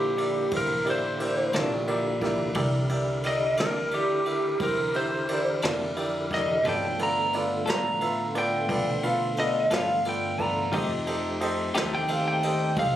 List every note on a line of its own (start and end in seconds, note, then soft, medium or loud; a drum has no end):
0.00 0.49 A#1 medium
0.00 2.52 D3 medium
0.00 2.52 A#3 medium
0.00 2.52 E4 medium
0.00 0.51 G4 loud
0.00 2.52 G4 medium
0.17 0.43 E4 medium
0.17 0.43 G4 medium
0.17 0.43 A#4 medium
0.17 0.43 D5 medium
0.17 ride medium
0.51 1.51 A1 medium
0.51 0.77 E4 medium
0.51 0.77 G4 soft
0.51 0.77 A#4 soft
0.51 0.77 C5 medium
0.51 kick loud
0.51 ride medium
0.57 0.87 A#4 medium
0.85 1.11 E4 medium
0.85 1.11 G4 medium
0.85 1.11 A#4 medium
0.85 1.11 D5 medium
0.85 ride medium
0.90 1.54 C5 loud
1.19 1.45 E4 medium
1.19 1.45 G4 medium
1.19 1.45 A#4 medium
1.19 1.45 D5 medium
1.19 ride medium
1.53 2.53 A#1 medium
1.53 1.75 C3 medium
1.53 1.75 E3 medium
1.53 1.74 A#3 medium
1.53 1.74 D4 medium
1.53 1.79 E4 medium
1.53 1.79 G4 medium
1.53 1.80 A#4 medium
1.53 1.80 D5 medium
1.53 snare loud
1.53 ride medium
1.87 2.13 E4 medium
1.87 2.13 G4 medium
1.87 2.13 A#4 medium
1.87 2.13 D5 medium
1.87 ride medium
2.21 2.47 E4 medium
2.21 2.47 G4 medium
2.21 2.47 A#4 medium
2.21 2.47 D5 medium
2.21 kick medium
2.21 snare soft
2.21 ride medium
2.54 3.55 C2 loud
2.54 6.61 D3 medium
2.54 6.60 E4 medium
2.54 2.81 E4 medium
2.54 2.81 G4 medium
2.54 6.61 G4 medium
2.54 2.81 A#4 medium
2.54 6.60 A#4 medium
2.54 2.81 D5 medium
2.54 kick loud
2.54 ride medium
2.89 3.15 E4 medium
2.89 3.15 G4 medium
2.89 3.15 A#4 medium
2.89 3.15 D5 medium
2.89 ride medium
3.23 3.50 E4 medium
3.23 3.50 G4 medium
3.23 3.50 A#4 medium
3.23 3.50 D5 medium
3.23 3.58 D#5 loud
3.23 ride medium
3.57 4.57 D2 medium
3.57 3.80 E3 medium
3.57 3.79 A#3 medium
3.57 3.79 D4 medium
3.57 3.83 E4 medium
3.57 3.84 G4 medium
3.57 3.83 A#4 soft
3.57 3.83 D5 medium
3.57 snare loud
3.57 ride medium
3.61 3.80 C3 medium
3.61 3.93 A#4 loud
3.91 4.18 E4 medium
3.91 4.18 G4 medium
3.91 4.59 G4 medium
3.91 4.18 A#4 medium
3.91 4.18 D5 medium
3.91 ride medium
4.26 4.52 E4 medium
4.26 4.52 G4 soft
4.26 4.51 A#4 soft
4.26 4.52 E5 medium
4.26 ride medium
4.60 5.59 E2 medium
4.60 4.86 E4 medium
4.60 4.86 G4 soft
4.60 4.86 A#4 soft
4.60 4.95 A#4 medium
4.60 4.86 C5 medium
4.60 kick loud
4.60 ride loud
4.94 5.20 E4 medium
4.94 5.20 G4 medium
4.94 5.20 A#4 medium
4.94 5.61 C5 loud
4.94 5.20 E5 medium
4.94 ride medium
5.29 5.54 E4 medium
5.29 5.54 G4 soft
5.29 5.54 A#4 medium
5.29 5.54 D5 medium
5.29 ride medium
5.62 6.62 F2 medium
5.62 5.84 E3 medium
5.62 5.84 A#3 medium
5.62 5.83 D4 medium
5.62 5.88 E4 medium
5.62 5.88 G4 medium
5.62 5.88 A#4 soft
5.62 5.88 D5 medium
5.62 snare loud
5.62 ride medium
5.66 5.84 C3 medium
5.96 6.22 E4 medium
5.96 6.22 G4 medium
5.96 6.22 A#4 medium
5.96 6.22 D5 medium
5.96 ride medium
6.31 6.56 E4 medium
6.31 6.56 G4 soft
6.31 6.56 A#4 soft
6.31 6.56 D5 medium
6.31 6.65 D#5 medium
6.31 kick medium
6.31 snare soft
6.31 ride medium
6.63 7.64 G2 medium
6.63 6.98 F#3 medium
6.63 6.84 G3 medium
6.63 6.98 A#3 medium
6.63 6.85 B3 medium
6.63 6.98 C4 medium
6.63 6.98 D#4 medium
6.63 6.85 F4 medium
6.63 6.91 F4 medium
6.63 6.86 A4 medium
6.63 6.91 A4 medium
6.63 6.91 B4 medium
6.63 6.91 D5 medium
6.63 kick loud
6.63 ride medium
6.69 7.00 G5 medium
6.97 10.69 D3 medium
6.97 10.69 A3 medium
6.97 10.69 B3 medium
6.97 10.69 F4 medium
6.97 7.24 F4 medium
6.97 7.25 A4 medium
6.97 7.25 B4 medium
6.97 7.25 D5 medium
6.97 ride medium
7.03 7.34 A#5 medium
7.33 7.59 F4 medium
7.33 7.59 A4 medium
7.33 7.59 B4 medium
7.33 7.59 D5 medium
7.33 ride medium
7.66 8.66 A2 medium
7.66 7.88 G3 medium
7.66 7.87 B3 medium
7.66 7.87 F4 medium
7.66 7.93 F4 medium
7.66 7.86 A4 medium
7.66 7.93 A4 soft
7.66 7.93 B4 medium
7.66 7.93 D5 medium
7.66 snare loud
7.66 ride medium
7.70 8.34 A#5 loud
8.01 8.27 F4 medium
8.01 8.27 A4 medium
8.01 8.27 B4 soft
8.01 8.27 E5 medium
8.01 ride medium
8.35 8.60 F4 medium
8.35 8.60 A4 medium
8.35 8.60 B4 medium
8.35 8.60 D5 medium
8.35 9.02 G5 loud
8.35 ride medium
8.69 9.68 B2 medium
8.69 8.95 F4 medium
8.69 8.95 A4 soft
8.69 8.95 B4 soft
8.69 8.95 D5 medium
8.69 kick loud
8.69 ride medium
9.03 9.29 F4 medium
9.03 9.29 A4 soft
9.03 9.29 B4 soft
9.03 9.29 F5 medium
9.03 ride medium
9.37 9.63 F4 medium
9.37 9.63 A4 medium
9.37 9.63 B4 medium
9.37 9.63 D5 medium
9.37 9.71 D#5 loud
9.37 ride medium
9.71 10.70 G2 loud
9.71 9.92 G3 medium
9.71 9.92 B3 medium
9.71 9.96 F4 medium
9.71 9.92 F4 medium
9.71 9.91 A4 medium
9.71 9.97 A4 soft
9.71 9.97 B4 medium
9.71 9.97 D5 medium
9.71 10.06 F5 loud
9.71 snare loud
9.71 ride medium
10.05 10.31 F4 medium
10.05 10.31 A4 medium
10.05 10.31 B4 medium
10.05 10.31 D5 medium
10.05 ride medium
10.09 10.42 G5 medium
10.39 10.64 F4 medium
10.39 10.65 A4 soft
10.39 10.65 B4 soft
10.39 10.65 D5 medium
10.39 11.89 A#5 medium
10.39 kick medium
10.39 ride medium
10.71 11.72 F2 loud
10.71 10.93 F3 medium
10.71 12.96 A3 medium
10.71 10.93 A3 medium
10.71 12.96 C4 medium
10.71 12.96 D#4 medium
10.71 10.94 D#4 medium
10.71 12.96 G4 medium
10.71 10.99 G4 medium
10.71 10.94 G4 medium
10.71 10.99 A4 medium
10.71 10.98 C5 medium
10.71 10.99 D#5 medium
10.71 kick loud
10.71 ride medium
11.07 11.32 G4 medium
11.07 11.32 A4 medium
11.07 11.32 C5 medium
11.07 11.33 D#5 medium
11.07 ride medium
11.41 11.66 G4 medium
11.41 11.67 A4 medium
11.41 11.67 C5 medium
11.41 11.66 D#5 medium
11.41 ride medium
11.75 12.74 D#2 medium
11.75 11.96 F3 medium
11.75 11.96 A3 medium
11.75 11.96 D#4 medium
11.75 11.95 G4 medium
11.75 12.00 G4 medium
11.75 12.00 A4 medium
11.75 12.00 C5 medium
11.75 12.00 D#5 medium
11.75 snare loud
11.75 ride medium
11.95 12.26 G5 loud
12.08 12.35 G4 medium
12.08 12.35 A4 medium
12.08 12.35 C5 medium
12.08 12.35 F5 medium
12.08 ride medium
12.28 12.76 G5 loud
12.43 12.69 G4 medium
12.43 12.69 A4 medium
12.43 12.69 C5 medium
12.43 12.69 D#5 medium
12.43 ride medium
12.77 12.96 C2 medium
12.77 12.96 G4 soft
12.77 12.96 A4 soft
12.77 12.96 C5 soft
12.77 12.96 D#5 medium
12.77 12.96 F5 loud
12.77 kick loud
12.77 ride medium